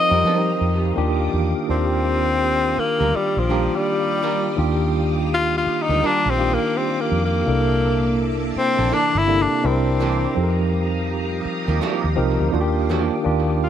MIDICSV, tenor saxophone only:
0, 0, Header, 1, 2, 480
1, 0, Start_track
1, 0, Key_signature, -3, "major"
1, 0, Tempo, 722892
1, 1117, Time_signature, 4, 2, 24, 8
1, 9092, End_track
2, 0, Start_track
2, 0, Title_t, "Tenor saxophone"
2, 0, Program_c, 0, 66
2, 0, Note_on_c, 0, 75, 117
2, 649, Note_off_c, 0, 75, 0
2, 1133, Note_on_c, 0, 60, 106
2, 1853, Note_on_c, 0, 58, 100
2, 1863, Note_off_c, 0, 60, 0
2, 2097, Note_on_c, 0, 55, 90
2, 2107, Note_off_c, 0, 58, 0
2, 2252, Note_on_c, 0, 53, 78
2, 2262, Note_off_c, 0, 55, 0
2, 2494, Note_on_c, 0, 55, 92
2, 2504, Note_off_c, 0, 53, 0
2, 3201, Note_off_c, 0, 55, 0
2, 3546, Note_on_c, 0, 65, 110
2, 3681, Note_off_c, 0, 65, 0
2, 3702, Note_on_c, 0, 65, 91
2, 3867, Note_on_c, 0, 63, 103
2, 3876, Note_off_c, 0, 65, 0
2, 4020, Note_on_c, 0, 62, 103
2, 4030, Note_off_c, 0, 63, 0
2, 4185, Note_on_c, 0, 60, 96
2, 4195, Note_off_c, 0, 62, 0
2, 4340, Note_on_c, 0, 58, 93
2, 4350, Note_off_c, 0, 60, 0
2, 4495, Note_on_c, 0, 60, 84
2, 4505, Note_off_c, 0, 58, 0
2, 4652, Note_on_c, 0, 58, 94
2, 4662, Note_off_c, 0, 60, 0
2, 4805, Note_off_c, 0, 58, 0
2, 4815, Note_on_c, 0, 58, 88
2, 5500, Note_off_c, 0, 58, 0
2, 5694, Note_on_c, 0, 60, 97
2, 5936, Note_on_c, 0, 62, 95
2, 5946, Note_off_c, 0, 60, 0
2, 6095, Note_on_c, 0, 64, 96
2, 6105, Note_off_c, 0, 62, 0
2, 6254, Note_on_c, 0, 62, 86
2, 6264, Note_off_c, 0, 64, 0
2, 6416, Note_on_c, 0, 60, 73
2, 6426, Note_off_c, 0, 62, 0
2, 7126, Note_off_c, 0, 60, 0
2, 9056, Note_on_c, 0, 65, 97
2, 9092, Note_off_c, 0, 65, 0
2, 9092, End_track
0, 0, End_of_file